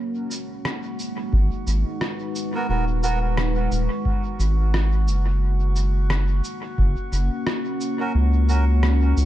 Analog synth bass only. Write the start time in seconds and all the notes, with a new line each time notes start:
1.33 G#1
1.67 G#1
2.69 D#1
3.72 D#1
4.40 G#1
5.08 F#1
6.78 F#1
7.12 F#1
8.15 C#2
9.17 C#2